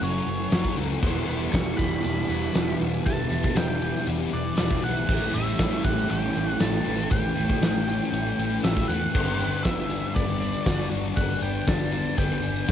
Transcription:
Already playing: F#2 C#3 E3 F#3 A3 C#4 E4 F#4 A4 F#5
0.01 F#1 F#2 C#3 F#3 C#4 C#5, closed hi-hat
0.27 F#1 C#3 E3 F#3, closed hi-hat
0.51 F#1 F#2 C#3 F#3 A3, snare, closed hi-hat, tambourine
0.65 kick
0.76 C#2 C#3 E3 F#3, closed hi-hat
1.01 E1 E2 B2 E3 G3 B3 D4 E4 G4 E5, kick, crash
1.27 E1 B2 E3 B3, closed hi-hat
1.52 E1 E2 B2 E3 D4 C#6, kick, snare, closed hi-hat, tambourine
1.77 E1 B2 E3 G4 B5, kick, closed hi-hat
1.92 snare
2.02 E1 E2 B2 E3 D4, closed hi-hat
2.28 E1 B2 E3, closed hi-hat
2.53 E1 E2 B2 E3 B3, snare, closed hi-hat, tambourine
2.79 E1 B2 E3, closed hi-hat
3.04 E1 E2 B2 E3 A5, kick, closed hi-hat
3.30 E1 B2 E3 B3, closed hi-hat
3.44 kick
3.55 E1 E2 B2 E3 D4 G5, snare, closed hi-hat, tambourine
3.81 B2 E3 G4, closed hi-hat
3.96 snare
4.06 E1 E2 B2 E3 D4, closed hi-hat
4.31 E1 B2 E3 D5, closed hi-hat
4.57 E1 E2 B2 E3 B3, snare, closed hi-hat, tambourine
4.71 kick
4.83 B1 B2 E3 F#5, closed hi-hat
5.07 A1 A2 E3 G3 A3 C#4 E4 A4 G5, kick, crash
5.32 A1 E3 A3 E5, closed hi-hat
5.58 A1 A2 E3 A3 C#4, kick, snare, closed hi-hat, tambourine
5.83 A1 E3 A3 G4 F#5, kick, closed hi-hat
6.08 A1 A2 E3 A3 C#4 G5, closed hi-hat
6.33 A1 E3 A3, closed hi-hat
6.49 F#5
6.59 A1 A2 E3 A3 A5, snare, closed hi-hat, tambourine
6.85 A1 E3 A3, closed hi-hat
7.10 A1 A2 E3 A3 G5, kick, closed hi-hat
7.35 A1 E3 A3, closed hi-hat
7.50 kick
7.60 A1 A2 E3 A3 C#4, snare, closed hi-hat, tambourine
7.86 E3 A3 G4, closed hi-hat
8.12 A1 A2 E3 A3 C#4, closed hi-hat
8.37 A1 E3 A3, closed hi-hat
8.63 A1 A2 E3 A3 E5, snare, closed hi-hat, tambourine
8.77 kick
8.88 E2 E3 A3 F#5, closed hi-hat
9.13 G1 G2 D3 G3 B3 D5, kick, crash
9.28 closed hi-hat
9.39 B3, closed hi-hat, tambourine
9.53 closed hi-hat
9.63 G1 B3 E5, kick, snare, closed hi-hat, tambourine
9.78 tambourine
9.89 D4, closed hi-hat, tambourine
10.15 G1 G2 D3 G3 B3 D5, kick, closed hi-hat, tambourine
10.29 closed hi-hat
10.40 D4, closed hi-hat, tambourine
10.53 closed hi-hat, tambourine
10.66 G1 G2 D3 G3 F#4, kick, snare, closed hi-hat, tambourine
10.79 closed hi-hat
10.91 G1 D3 G3 D4, closed hi-hat, tambourine
11.05 tambourine
11.16 G1 G2 D3 G3 B3 F#5, kick, closed hi-hat
11.41 G1 B3 G5, closed hi-hat, tambourine
11.55 closed hi-hat
11.66 G1 B3 A5, kick, snare, closed hi-hat, tambourine
11.79 tambourine
11.91 D4, closed hi-hat, tambourine
12.06 closed hi-hat
12.17 G1 G2 D3 G3 B3 G5, kick, closed hi-hat, tambourine
12.31 closed hi-hat
12.42 G1 D4, closed hi-hat, tambourine
12.56 closed hi-hat, tambourine
12.67 G2 D3 F#4, kick, snare, closed hi-hat

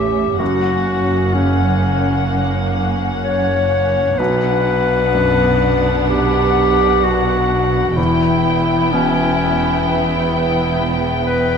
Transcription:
Already playing: A1 E2 A2 A3 C#4 G4 E5
0.39 F#1 F#2 A#3 C#4 F#4 F#5
1.34 C#3 C#4
3.24 C#5
4.18 B1 B2 B3 D4 B4 F#5
5.14 F#2
6.10 G4
7.04 F#4
7.97 E1 E2 B3 E4 G5
8.92 B2 C#4
11.26 B4

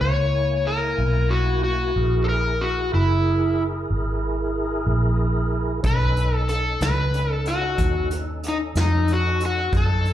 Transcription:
Already playing: A#3 E4 G#5
0.01 C#2 C#5
0.67 A#4
0.98 B1
1.31 F#4
1.64 F#4
1.96 A#1 E4 G#4 A#4
2.24 A4
2.29 A#4
2.61 F#4
2.94 F#1 E4
3.90 G#1
4.87 A#1
5.83 B1 C#4 D#4 A4 B4, kick, closed hi-hat
6.17 closed hi-hat
6.36 A4
6.49 A4, closed hi-hat
6.81 C#2 B4, snare, closed hi-hat
7.14 closed hi-hat
7.32 A4
7.46 F#4, closed hi-hat
7.78 D#2, kick, closed hi-hat
8.11 closed hi-hat
8.43 closed hi-hat
8.48 D#4
8.75 F2, snare, closed hi-hat
8.81 D#4
9.08 closed hi-hat
9.13 F#4
9.40 closed hi-hat
9.46 F#4
9.73 F#2 D#4 A4 C#5, kick, closed hi-hat
10.05 closed hi-hat

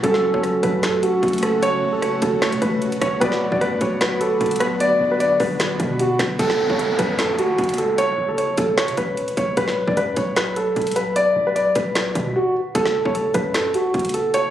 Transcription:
0.02 F#1 C#3 F#3 A3 C#4 F#4 A4, kick, closed hi-hat
0.14 snare
0.34 F#1 C#5, kick
0.43 A4, cross-stick, closed hi-hat
0.63 F#2 B4, kick, closed hi-hat
0.83 A4, finger snap, snare, closed hi-hat
1.03 F#4, closed hi-hat
1.23 F#1, kick, closed hi-hat
1.28 closed hi-hat
1.33 closed hi-hat
1.38 closed hi-hat
1.42 A4, cross-stick, closed hi-hat
1.63 C#5, closed hi-hat
1.82 F#1
1.93 A4
2.02 C#5, cross-stick, closed hi-hat
2.22 F#1 A4, kick, closed hi-hat
2.42 C#5, finger snap, snare, closed hi-hat
2.52 C#3, closed hi-hat
2.62 A1 B4, kick, closed hi-hat
2.82 closed hi-hat
2.92 E1, closed hi-hat
3.02 F#1 C#5, kick, cross-stick, closed hi-hat
3.20 B1 D3 B3 F#4 B4 D5, kick, closed hi-hat
3.32 snare
3.52 F#2 D5, kick
3.61 B4, cross-stick, closed hi-hat
3.81 B1 C#5, kick, closed hi-hat
4.01 B4, finger snap, snare, closed hi-hat
4.21 A4, closed hi-hat
4.41 B1, kick, closed hi-hat
4.46 closed hi-hat
4.51 closed hi-hat
4.56 closed hi-hat
4.60 B4, cross-stick, closed hi-hat
4.80 D5, closed hi-hat
5.00 B1
5.11 B4
5.20 D5, closed hi-hat
5.40 B1 B4, kick, open hi-hat
5.60 finger snap, snare, closed hi-hat
5.80 B2, kick, closed hi-hat
5.99 F#4, closed hi-hat
6.19 B1, finger snap, kick, cross-stick, snare, closed hi-hat
6.39 F#1 A4, kick, closed hi-hat, downlifter
6.50 snare
6.70 F#1 C#5, kick
6.79 A4, closed hi-hat
6.99 F#2 B4, kick, closed hi-hat
7.19 A4, finger snap, snare, closed hi-hat
7.39 F#4, closed hi-hat
7.58 F#1, kick, closed hi-hat
7.64 closed hi-hat
7.69 closed hi-hat
7.74 closed hi-hat
7.78 A4, closed hi-hat
7.98 C#5, closed hi-hat
8.18 F#1
8.28 A4
8.38 C#5, closed hi-hat
8.57 F#1 A4, kick, closed hi-hat
8.78 C#5, finger snap, snare, closed hi-hat
8.88 C#3, closed hi-hat
8.97 A1 B4, kick, closed hi-hat
9.17 closed hi-hat
9.28 E1, closed hi-hat
9.37 F#1 C#5, kick, closed hi-hat
9.57 B1 B4, kick, closed hi-hat
9.68 snare
9.87 F#2 D5, kick
9.97 B4, closed hi-hat
10.16 B1 C#5, kick, closed hi-hat
10.36 B4, finger snap, snare, closed hi-hat
10.56 A4, closed hi-hat
10.76 B1, kick, closed hi-hat
10.82 closed hi-hat
10.87 closed hi-hat
10.91 closed hi-hat
10.96 B4, closed hi-hat
11.16 D5, closed hi-hat
11.36 B1
11.47 B4
11.56 D5, closed hi-hat
11.75 B1 B4, kick, closed hi-hat
11.95 finger snap, snare, closed hi-hat
12.15 B2, kick, closed hi-hat
12.36 F#4
12.75 F#1 A4, kick, closed hi-hat
12.86 snare
13.05 F#1 C#5, kick
13.15 A4, closed hi-hat
13.34 F#2 B4, kick, closed hi-hat
13.54 A4, finger snap, snare, closed hi-hat
13.74 F#4, closed hi-hat
13.94 F#1, kick, closed hi-hat
13.99 closed hi-hat
14.05 closed hi-hat
14.09 closed hi-hat
14.14 A4, closed hi-hat
14.34 C#5, closed hi-hat

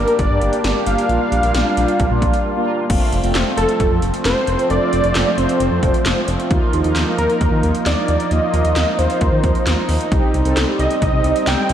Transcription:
Already playing: G3 A#3 D4 A#4
0.08 closed hi-hat
0.19 G1 D5, kick, closed hi-hat
0.30 G2 A#3 D4 G4
0.41 G1, closed hi-hat
0.53 closed hi-hat
0.64 G1, snare, closed hi-hat
0.76 A#3 D4 G4
0.86 G1 F5, closed hi-hat
0.98 closed hi-hat
1.09 A#1 G3 A#3 D4 F4, closed hi-hat
1.32 A#1, closed hi-hat
1.43 A#1 A#3 D4 F4, closed hi-hat
1.54 A#1, snare, closed hi-hat
1.77 A#1 A#3 D4 F4, closed hi-hat
1.88 closed hi-hat
2.00 A#1, kick, closed hi-hat
2.11 A#2 A#3 D4 F4
2.22 A#1, kick, closed hi-hat
2.33 closed hi-hat
2.56 A#3 D4 F4
2.90 F1 F3 A3 C4 F4, kick, closed hi-hat, crash
3.12 F1, closed hi-hat
3.24 F1 A3 C4 F4, closed hi-hat
3.35 F1, snare, clap, closed hi-hat
3.46 A3 C4 F4
3.57 F1 A4, closed hi-hat
3.69 closed hi-hat
3.80 F1, kick, closed hi-hat
3.91 F2
4.02 F1, closed hi-hat
4.14 closed hi-hat
4.25 F1 C5, snare, clap, closed hi-hat
4.47 F1, closed hi-hat
4.59 closed hi-hat
4.70 F1 A3 C4 F4 D5, closed hi-hat
4.82 A3 C4 F4
4.93 F1, closed hi-hat
5.04 F1, closed hi-hat
5.15 F1, snare, clap, closed hi-hat
5.38 F1 A3 C4 F4 C5, closed hi-hat
5.49 closed hi-hat
5.60 F1, closed hi-hat
5.71 F2
5.83 F1, kick, closed hi-hat
5.94 closed hi-hat
6.06 F1, snare, clap, closed hi-hat
6.28 F1, closed hi-hat
6.40 closed hi-hat
6.51 D#2 A#3 D#4 F4, kick, closed hi-hat
6.73 D#2, closed hi-hat
6.84 D#2 A#3 D#4 F4, closed hi-hat
6.96 D#2, snare, clap, closed hi-hat
7.07 A#3 D#4 F4
7.18 D#2 A#4, closed hi-hat
7.30 closed hi-hat
7.41 D#2, kick, closed hi-hat
7.52 D#3
7.63 D#2, closed hi-hat
7.75 closed hi-hat
7.86 D#2 D5, snare, clap, closed hi-hat
8.08 D#2, closed hi-hat
8.20 closed hi-hat
8.31 D#2 A#3 D#4 F4 D#5, closed hi-hat
8.43 A#3 D#4 F4
8.54 D#2, closed hi-hat
8.65 D#2, closed hi-hat
8.76 D#2, snare, clap, closed hi-hat
8.99 D#2 A#3 D#4 F4 C5, closed hi-hat
9.10 closed hi-hat
9.21 D#2, kick, closed hi-hat
9.33 D#3
9.44 D#2, kick, closed hi-hat
9.55 closed hi-hat
9.66 D#2, snare, clap, closed hi-hat
9.89 D#2, open hi-hat
10.01 closed hi-hat
10.12 C2 G3 C4 D#4 G4, kick, closed hi-hat
10.34 C2, closed hi-hat
10.45 C2 C4 D#4 A4, closed hi-hat
10.57 C2, snare, clap, closed hi-hat
10.68 C4 D#4 G4
10.79 C2 D#5, closed hi-hat
10.91 closed hi-hat
11.02 C2 D#5, kick, closed hi-hat
11.13 C3
11.24 C2, closed hi-hat
11.36 closed hi-hat
11.47 C2 G5, snare, clap, closed hi-hat
11.69 C2, closed hi-hat

